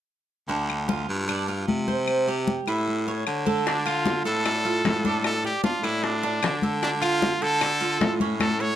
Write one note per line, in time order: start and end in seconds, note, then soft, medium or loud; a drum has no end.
0.49 1.04 D2 medium
0.49 0.88 D4 medium
0.49 high conga soft
0.69 high conga soft
0.69 claves medium
0.88 1.27 F4 medium
0.88 high conga medium
1.09 1.64 G2 medium
1.09 high conga soft
1.29 1.48 D4 medium
1.29 high conga soft
1.29 claves medium
1.48 1.87 F4 medium
1.48 high conga soft
1.67 2.61 C3 medium
1.67 high conga medium
1.88 2.26 C5 medium
1.88 high conga medium
2.08 high conga soft
2.08 claves medium
2.28 2.66 G4 medium
2.28 high conga soft
2.47 high conga medium
2.67 3.23 A2 medium
2.67 3.06 E4 medium
2.67 high conga soft
2.67 claves medium
2.88 high conga soft
3.07 3.46 C#5 medium
3.07 high conga soft
3.27 4.20 D3 medium
3.27 high conga soft
3.27 claves medium
3.46 3.66 A4 medium
3.46 high conga medium
3.66 3.84 D4 medium
3.66 3.86 D4 medium
3.66 high bongo medium
3.66 high conga soft
3.86 4.24 F4 medium
3.86 4.23 F4 medium
3.86 high conga soft
3.86 claves medium
4.06 high bongo medium
4.06 high conga medium
4.25 4.81 A2 medium
4.25 5.20 A4 medium
4.25 4.45 A4 medium
4.25 high conga soft
4.45 4.65 D5 medium
4.45 high bongo medium
4.45 high conga soft
4.45 claves medium
4.65 5.04 F4 medium
4.65 high conga soft
4.84 5.50 A2 medium
4.84 high bongo medium
4.84 low bongo medium
4.84 high conga medium
5.05 5.43 D4 medium
5.05 high conga medium
5.24 5.43 A4 medium
5.24 high bongo medium
5.24 high conga soft
5.24 claves medium
5.44 5.63 G4 medium
5.44 5.64 D5 medium
5.44 high bongo soft
5.44 high conga soft
5.64 5.83 D4 medium
5.64 5.85 F4 medium
5.64 high bongo medium
5.64 high conga medium
5.83 6.39 A2 medium
5.83 6.05 E4 medium
5.83 6.22 D5 medium
5.83 high bongo soft
5.83 high conga soft
5.83 claves medium
6.03 6.63 D4 medium
6.03 high bongo medium
6.03 high conga soft
6.23 6.62 D4 medium
6.23 high bongo soft
6.23 high conga soft
6.42 7.35 D3 medium
6.42 high bongo medium
6.42 low bongo medium
6.42 high conga soft
6.42 claves medium
6.62 6.82 A4 medium
6.62 high conga medium
6.82 6.91 D4 medium
6.82 7.01 D4 medium
6.82 high bongo medium
6.82 high conga soft
7.01 7.44 F4 loud
7.01 7.40 F4 medium
7.01 high conga soft
7.01 claves medium
7.22 high bongo medium
7.22 high conga medium
7.41 7.97 D3 medium
7.41 7.61 A4 medium
7.41 8.14 A4 loud
7.41 high conga soft
7.61 7.81 D5 medium
7.61 high bongo medium
7.61 high conga soft
7.61 claves medium
7.81 8.19 F4 medium
7.81 high conga soft
8.00 8.76 A2 medium
8.00 high bongo medium
8.00 low bongo medium
8.00 high conga medium
8.20 8.59 C#4 medium
8.20 high conga medium
8.40 8.62 A4 medium
8.40 high bongo medium
8.40 high conga medium
8.40 claves medium
8.60 8.76 A4 medium
8.60 8.76 C#5 loud
8.60 high bongo soft